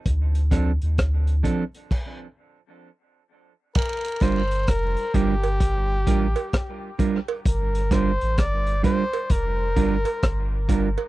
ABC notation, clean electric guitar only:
X:1
M:4/4
L:1/8
Q:"Swing 16ths" 1/4=65
K:Gm
V:1 name="Clean electric guitar"
z [F,CDA] z [F,CDA] z4 | z [G,DFB] z [G,DFB] z [G,DFB] z [G,DFB] | z [G,DFB] z [G,DFB] z [G,DFB] z [G,DFB] |]